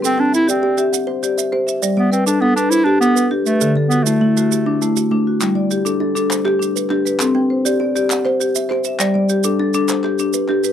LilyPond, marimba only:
\new Staff \with { instrumentName = "Marimba" } { \time 12/8 \key g \major \tempo 4. = 134 << { b'8 g''8 e''4 d''8 e''4 c''8 d''4. e''8~ | e''8 d''8 b'4 a'8 b'4 g'8 a'4. b'8~ | b'8 a'8 fis'4 e'8 fis'4 d'8 e'4. fis'8~ | fis'8 d''8 g'4 a'8 a'4 g'4. r8 b'8~ |
b'8 g''8 c''4 d''8 d''4 c''4. r8 e''8~ | e''8 d''8 g'4 a'8 a'4 g'4. r8 b'8 | } \\ { c'4 r8 g'4 g'4 r8 g'4 c''4 | g4 r8 d'4 d'4 r8 d'4 g'4 | d4 r8 a4 a4 r8 a4 d'4 | g4 r8 d'4 d'4 r8 d'4 g'4 |
c'4 r8 g'4 g'4 r8 g'4 c''4 | g4 r8 d'4 d'4 r8 d'4 g'4 | } >> }